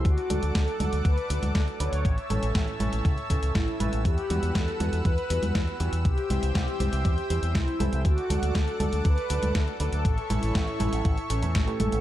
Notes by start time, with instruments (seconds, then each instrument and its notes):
0.05 fingered electric bass D2, analog polysynth F#4, analog synth pad A4 D5 F#5 D6, kick, closed hi-hat
0.18 closed hi-hat
0.30 fingered electric bass D2, grand piano F#3 A3 D4 A4, closed hi-hat, high conga
0.43 fingered electric bass D2, closed hi-hat
0.55 fingered electric bass D2, analog polysynth A4, kick, snare, closed hi-hat
0.68 closed hi-hat
0.80 fingered electric bass D2, grand piano F#3 A3 D4 A4, closed hi-hat, high conga
0.92 fingered electric bass D2, closed hi-hat
1.05 fingered electric bass D2, analog polysynth B4, kick, closed hi-hat
1.18 closed hi-hat
1.30 fingered electric bass D2, grand piano F#3 A3 D4 A4, closed hi-hat
1.42 fingered electric bass D2, closed hi-hat, high conga
1.55 fingered electric bass D2, analog polysynth A4, kick, snare, closed hi-hat
1.68 closed hi-hat
1.80 fingered electric bass D2, grand piano F#3 A3 D4 B4, analog polysynth C#5, closed hi-hat
1.92 fingered electric bass D2, closed hi-hat
2.05 fingered electric bass A1, analog synth pad C#5 E5 A5 E6, kick, closed hi-hat
2.18 closed hi-hat
2.30 fingered electric bass A1, grand piano A2 E3 A3 C#4 A4, closed hi-hat, high conga
2.43 fingered electric bass A1, closed hi-hat
2.55 fingered electric bass A1, kick, snare, closed hi-hat
2.68 closed hi-hat
2.80 fingered electric bass A1, grand piano A2 E3 A3 C#4 A4, closed hi-hat, high conga
2.93 fingered electric bass A1, closed hi-hat
3.05 fingered electric bass C#2, kick, closed hi-hat
3.18 closed hi-hat
3.30 fingered electric bass C#2, grand piano A2 E3 A3 C#4 A4, kick, closed hi-hat
3.43 fingered electric bass C#2, closed hi-hat
3.55 fingered electric bass A1, analog polysynth E4, kick, snare, closed hi-hat
3.68 closed hi-hat
3.80 fingered electric bass A1, grand piano E3 A3 C#4 B4, closed hi-hat, high conga
3.93 fingered electric bass A1, closed hi-hat
4.05 fingered electric bass E2, analog polysynth G4, analog synth pad B4 F#5, kick, closed hi-hat
4.18 closed hi-hat
4.30 fingered electric bass E2, grand piano E3 G3 B3 F#4, closed hi-hat, high conga
4.43 fingered electric bass E2, closed hi-hat
4.55 fingered electric bass E2, analog polysynth A4, kick, snare, closed hi-hat
4.68 closed hi-hat
4.80 fingered electric bass E2, grand piano E3 G3 B3 F#4, closed hi-hat, high conga
4.93 fingered electric bass E2, closed hi-hat
5.05 fingered electric bass E2, analog polysynth B4, kick, closed hi-hat
5.18 closed hi-hat
5.30 fingered electric bass E2, grand piano E3 G3 B3 F#4, closed hi-hat
5.43 fingered electric bass E2, closed hi-hat, high conga
5.55 fingered electric bass E2, kick, snare, closed hi-hat
5.68 closed hi-hat
5.80 fingered electric bass E2, grand piano E3 G3 B3 G4, analog polysynth F#4, closed hi-hat
5.92 fingered electric bass E2, closed hi-hat
6.05 fingered electric bass C2, analog polysynth G4, analog synth pad C5 E5 G5, kick, closed hi-hat
6.18 closed hi-hat
6.30 fingered electric bass C2, grand piano E3 G3 C4 G4, analog polysynth G4, closed hi-hat, high conga
6.43 fingered electric bass C2, closed hi-hat
6.55 fingered electric bass C2, kick, snare, closed hi-hat
6.68 closed hi-hat
6.80 fingered electric bass C2, grand piano E3 G3 C4 G4, closed hi-hat, high conga
6.93 fingered electric bass C2, closed hi-hat
7.05 fingered electric bass E2, kick, closed hi-hat
7.18 closed hi-hat
7.30 fingered electric bass E2, grand piano E3 G3 C4 G4, closed hi-hat
7.43 fingered electric bass E2, closed hi-hat
7.55 fingered electric bass C2, analog polysynth E4, kick, snare, closed hi-hat
7.68 closed hi-hat
7.80 fingered electric bass C2, grand piano E3 G3 C4 A4, closed hi-hat, high conga
7.92 fingered electric bass C2, closed hi-hat
8.05 fingered electric bass D2, analog polysynth F#4, analog synth pad A4 D5 F#5 D6, kick, closed hi-hat
8.18 closed hi-hat
8.30 fingered electric bass D2, grand piano F#3 A3 D4 A4, closed hi-hat, high conga
8.42 fingered electric bass D2, closed hi-hat
8.55 fingered electric bass D2, kick, snare, closed hi-hat
8.68 closed hi-hat
8.80 fingered electric bass D2, grand piano F#3 A3 D4 A4, closed hi-hat, high conga
8.93 fingered electric bass D2, closed hi-hat
9.05 fingered electric bass D2, analog polysynth B4, kick, closed hi-hat
9.18 closed hi-hat
9.30 fingered electric bass D2, grand piano F#3 A3 D4 A4, closed hi-hat
9.42 fingered electric bass D2, closed hi-hat, high conga
9.55 fingered electric bass D2, kick, snare, closed hi-hat
9.68 closed hi-hat
9.80 fingered electric bass D2, grand piano F#3 A3 D4 B4, analog polysynth A4, closed hi-hat
9.92 fingered electric bass D2, closed hi-hat
10.05 fingered electric bass A1, analog polysynth A4, analog synth pad C#5 E5 C#6, kick, closed hi-hat
10.18 closed hi-hat
10.30 fingered electric bass A1, grand piano A2 E3 A3 C#4 A4, analog polysynth E4, closed hi-hat, high conga
10.42 fingered electric bass A1, closed hi-hat
10.55 fingered electric bass A1, kick, snare, closed hi-hat
10.68 closed hi-hat
10.80 fingered electric bass A1, grand piano A2 E3 A3 C#4 A4, closed hi-hat, high conga
10.92 fingered electric bass A1, closed hi-hat
11.05 fingered electric bass A1, kick, closed hi-hat
11.17 closed hi-hat
11.30 fingered electric bass A1, grand piano A2 E3 A3 C#4 A4, analog polysynth C#4 C#5, closed hi-hat
11.42 fingered electric bass E2, grand piano A2 E3 A3 C#4 A4, closed hi-hat
11.55 fingered electric bass A1, analog polysynth A3 A4, kick, snare, closed hi-hat
11.67 grand piano A2 E3 A3 C#4 G4, closed hi-hat
11.80 fingered electric bass A1, grand piano E3 A3 C#4 A4, closed hi-hat, high conga
11.92 fingered electric bass A1, closed hi-hat